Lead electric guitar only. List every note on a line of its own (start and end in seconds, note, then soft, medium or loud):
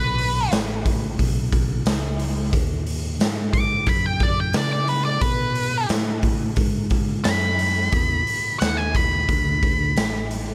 0.00 0.51 B4 medium
3.53 3.86 D6 medium
3.89 4.04 B5 medium
4.06 4.21 G5 medium
4.23 4.38 D5 loud
4.40 4.55 G5 medium
4.56 4.71 D5 loud
4.73 4.88 D5 medium
4.88 5.04 B4 medium
5.05 5.21 D5 medium
5.21 5.88 B4 loud
7.24 8.57 B5 loud
8.60 8.77 F#5 medium
8.77 8.96 G#5 loud
8.96 10.54 B5 loud